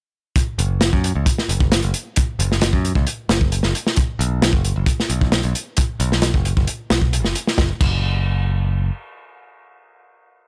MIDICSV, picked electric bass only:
0, 0, Header, 1, 2, 480
1, 0, Start_track
1, 0, Tempo, 451128
1, 384, Time_signature, 4, 2, 24, 8
1, 11149, End_track
2, 0, Start_track
2, 0, Title_t, "Picked electric bass"
2, 0, Program_c, 0, 34
2, 621, Note_on_c, 0, 30, 98
2, 951, Note_off_c, 0, 30, 0
2, 989, Note_on_c, 0, 42, 88
2, 1184, Note_off_c, 0, 42, 0
2, 1228, Note_on_c, 0, 37, 86
2, 1324, Note_off_c, 0, 37, 0
2, 1584, Note_on_c, 0, 30, 80
2, 1912, Note_off_c, 0, 30, 0
2, 1948, Note_on_c, 0, 30, 82
2, 2043, Note_off_c, 0, 30, 0
2, 2544, Note_on_c, 0, 30, 98
2, 2872, Note_off_c, 0, 30, 0
2, 2905, Note_on_c, 0, 42, 87
2, 3102, Note_off_c, 0, 42, 0
2, 3142, Note_on_c, 0, 37, 90
2, 3241, Note_off_c, 0, 37, 0
2, 3502, Note_on_c, 0, 30, 83
2, 3831, Note_off_c, 0, 30, 0
2, 3864, Note_on_c, 0, 30, 81
2, 3962, Note_off_c, 0, 30, 0
2, 4460, Note_on_c, 0, 35, 102
2, 4790, Note_off_c, 0, 35, 0
2, 4818, Note_on_c, 0, 30, 90
2, 5019, Note_off_c, 0, 30, 0
2, 5064, Note_on_c, 0, 30, 88
2, 5162, Note_off_c, 0, 30, 0
2, 5423, Note_on_c, 0, 35, 81
2, 5752, Note_off_c, 0, 35, 0
2, 5786, Note_on_c, 0, 35, 85
2, 5883, Note_off_c, 0, 35, 0
2, 6381, Note_on_c, 0, 35, 102
2, 6710, Note_off_c, 0, 35, 0
2, 6745, Note_on_c, 0, 30, 90
2, 6942, Note_off_c, 0, 30, 0
2, 6989, Note_on_c, 0, 30, 90
2, 7084, Note_off_c, 0, 30, 0
2, 7346, Note_on_c, 0, 35, 82
2, 7708, Note_off_c, 0, 35, 0
2, 7708, Note_on_c, 0, 30, 92
2, 7804, Note_off_c, 0, 30, 0
2, 8065, Note_on_c, 0, 30, 97
2, 8201, Note_off_c, 0, 30, 0
2, 8305, Note_on_c, 0, 30, 96
2, 9462, Note_off_c, 0, 30, 0
2, 11149, End_track
0, 0, End_of_file